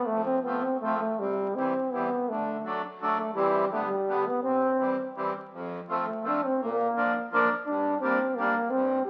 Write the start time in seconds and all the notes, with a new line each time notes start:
0.06 A3
0.11 F2
0.24 C4
0.43 F3 A3 B3
0.47 C4
0.62 C4
0.81 F3 A3
0.85 C4
0.99 A3
1.19 C3 G3
1.56 E3 G3 C4
1.92 E3 G3 B3 C4
2.29 D3 A3
2.65 F#3 A3 D4
3.01 F#3 A3 D4
3.18 A3
3.34 E3 G3 C4
3.72 D3 G3 A3 B3
3.88 G3
4.08 D3 G3 B3
4.27 B3
4.44 C3 C4
4.79 E3 G3 C4
5.16 E3 G3 C4
5.53 F2
5.89 F3 A3 C4
6.24 F3 A3 C4 D4
6.45 C4
6.61 A#2 A#3
6.96 F3 A#3 D4
7.32 F3 A#3 D4
7.66 G2 D4
8.00 G3 A#3 C4 D4
8.36 G3 A#3
8.40 A#3 D4
8.70 G2 C4
9.05 G4